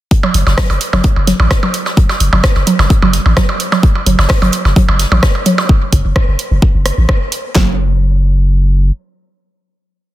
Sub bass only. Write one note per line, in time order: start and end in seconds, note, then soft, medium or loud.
0.34 0.43 F#1 medium
0.47 0.55 F#1 medium
0.70 0.78 F#1 medium
0.93 1.01 F#1 medium
1.16 1.33 F#1 loud
1.40 1.48 A1 medium
2.20 2.29 F#1 medium
2.33 2.41 F#1 medium
2.56 2.64 F#1 medium
2.79 2.87 F#1 medium
3.02 3.19 F#1 loud
3.26 3.34 A1 loud
4.06 4.16 F#1 medium
4.19 4.27 F#1 medium
4.42 4.50 F#1 medium
4.65 4.73 F#1 medium
4.88 5.05 F#1 loud
5.12 5.20 A1 loud
5.93 6.02 F#1 medium
6.05 6.13 F#1 loud
6.28 6.36 F#1 medium
6.51 6.59 F#1 loud
6.75 6.91 F#1 loud
6.98 7.06 A1 loud
7.55 8.91 F#1 loud